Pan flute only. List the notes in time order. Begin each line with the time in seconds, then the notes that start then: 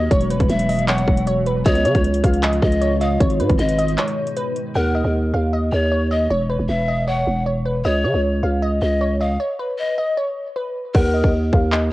0.50 E5
0.88 F#5
1.66 C#5
2.63 D#5
3.01 F5
3.59 D#5
4.75 A#4
5.72 C#5
6.11 D#5
6.69 E5
7.08 F#5
7.85 C#5
8.82 D#5
9.20 F5
9.78 D#5
10.94 A#4